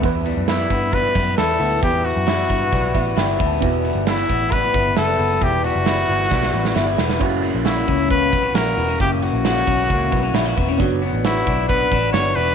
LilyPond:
<<
  \new Staff \with { instrumentName = "Trumpet" } { \time 4/4 \key e \dorian \tempo 4 = 134 r4 e'4 b'4 a'4 | g'8 fis'2. r8 | r4 e'4 b'4 a'4 | g'8 fis'2. r8 |
r4 e'4 b'4 ais'4 | g'8 fis'2. r8 | r4 e'4 b'4 cis''8 b'8 | }
  \new Staff \with { instrumentName = "Upright piano" } { \time 4/4 \key e \dorian << { r1 | r2 r8 e''8 \tuplet 3/2 { g''4 a''8 } | r1 | r1 |
r1 | r1 | r1 | } \\ { <b e' b'>1~ | <b e' b'>1 | <b e' fis'>1~ | <b e' fis'>1 |
<cis' e' fis'>1~ | <cis' e' fis'>1 | <b d' fis'>1 | } >> }
  \new Staff \with { instrumentName = "Clean electric guitar" } { \time 4/4 \key e \dorian e,8 g8 e'8 b8 g8 b8 e'8 b8 | e,4 e'8 b8 g8 b8 e'8 b8 | e,8 g8 e'8 b8 g8 b8 e'8 b8 | e,8 g8 e'8 b8 g8 b8 e'8 b8 |
fis,8 ais8 fis'8 cis'4 b16 cis'16 fis'8 b16 cis'16 | fis,8 ais8 fis'8 cis'8 ais8 b16 cis'16 e'16 fis'16 b16 cis'16 | fis8 b8 fis'8 d'8 b8 d'8 fis'8 d'8 | }
  \new Staff \with { instrumentName = "Twelve-string acoustic guitar" } { \time 4/4 \key e \dorian <e g b e'>8 <g b e'>8 <e g b e'>8 <g b e'>8 <e g b e'>8 <g b e'>8 <e g b e'>8 <g b e'>8 | <e g b e'>8 <g b e'>8 <e g b e'>8 <g b e'>8 <e g b e'>8 <g b e'>8 <e g b e'>8 <g b e'>8 | <e g b e'>8 <g b e'>8 <e g b e'>8 <g b e'>8 <e g b e'>8 <g b e'>8 <e g b e'>8 <g b e'>8 | <e g b e'>8 <g b e'>8 <e g b e'>8 <g b e'>8 <e g b e'>8 <g b e'>8 <e g b e'>8 <b e'>8 |
<fis, cis e ais e'>8 <e ais e'>8 <fis, cis e ais e'>8 <e ais>8 <cis e ais e'>8 <e e'>8 <fis, cis e ais e'>8 <e ais e'>8 | <fis, cis e ais e'>8 <e ais e'>8 <fis, cis e ais e'>8 <e ais e'>8 <cis e ais e'>8 <e ais e'>8 <fis, cis e ais e'>8 <e ais e'>8 | <fis b d' fis'>8 <b d' fis'>8 <fis b d' fis'>8 <b d' fis'>8 <fis b d' fis'>8 <b d' fis'>8 <fis b d' fis'>8 <b d' fis'>8 | }
  \new Staff \with { instrumentName = "Picked electric bass" } { \clef bass \time 4/4 \key e \dorian e,8. fis,8. g,4 fis,8 e,8 d,8 | e,8. fis,8. g,8 b,,8 a,,8 g,,8 d,8 | e,,8. g,,8. a,,4 g,,8 fis,,8 fis,,8 | e,,8. fis,,8. g,,8 b,,8 a,,8 g,,8 e,,8 |
fis,,8. ais,,8. cis,4 b,,8 ais,,8 e,,8 | fis,,8. ais,,8. b,,8 cis,8 b,,8 ais,,8 e,,8 | fis,,8. a,,8. b,,4 a,,8 g,,8 e,,8 | }
  \new DrumStaff \with { instrumentName = "Drums" } \drummode { \time 4/4 <hh bd>8 hh8 <hh sn>8 <hh bd>8 <hh bd>8 <hh bd>8 <hh sn>8 hho8 | <hh bd>8 hh8 <hh sn>8 <hh bd>8 <hh bd>8 <hh bd>8 <hh sn>8 <hho bd>8 | <hh bd>8 hh8 <hh sn>8 <hh bd>8 <hh bd>8 <hh bd>8 <hh sn>8 hho8 | <hh bd>8 hh8 <hh sn>8 hh8 <bd sn>16 sn8 sn16 sn8 sn16 sn16 |
<cymc bd>8 hh8 <hh sn>8 <hh bd>8 <hh bd>8 <hh bd>8 <hh sn>8 hho8 | <hh bd>8 hh8 <hh sn>8 <hh bd>8 <hh bd>8 <hh bd>8 <hh sn>8 <hho bd>8 | <hh bd>8 hh8 <hh sn>8 <hh bd>8 <hh bd>8 <hh bd>8 <hh sn>8 hho8 | }
>>